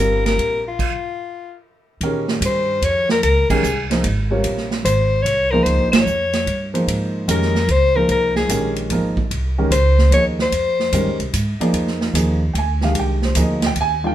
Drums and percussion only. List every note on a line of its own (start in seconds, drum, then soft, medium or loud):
0.26 snare soft
0.26 ride soft
0.39 ride soft
0.79 kick medium
0.79 crash medium
2.01 ride medium
2.28 snare soft
2.42 hi-hat pedal medium
2.42 ride medium
2.82 ride medium
3.09 snare medium
3.23 ride medium
3.50 kick medium
3.50 crash medium
3.63 hi-hat pedal medium
3.91 snare soft
3.91 ride soft
4.04 ride medium
4.44 ride medium
4.57 snare soft
4.71 snare soft
4.85 hi-hat pedal medium
4.85 ride medium
5.26 ride medium
5.66 ride medium
5.93 snare medium
5.93 ride medium
6.07 hi-hat pedal medium
6.33 snare soft
6.33 ride soft
6.47 ride medium
6.75 ride soft
6.88 ride medium
7.29 hi-hat pedal medium
7.29 ride medium
7.42 snare soft
7.55 snare soft
7.68 ride medium
8.09 ride medium
8.36 snare soft
8.49 hi-hat pedal medium
8.49 ride medium
8.76 ride soft
8.90 ride medium
9.17 kick medium
9.31 ride medium
9.72 hi-hat pedal medium
9.72 ride medium
9.98 snare soft
10.12 ride medium
10.39 snare soft
10.52 ride medium
10.80 snare soft
10.92 hi-hat pedal medium
10.92 ride medium
11.20 ride soft
11.33 hi-hat pedal medium
11.33 ride medium
11.61 ride medium
11.74 ride medium
11.87 snare soft
12.01 snare soft
12.15 hi-hat pedal medium
12.15 ride medium
12.55 ride medium
12.81 snare soft
12.95 ride medium
13.22 snare soft
13.35 hi-hat pedal medium
13.35 ride medium
13.62 snare soft
13.62 ride soft
13.76 ride medium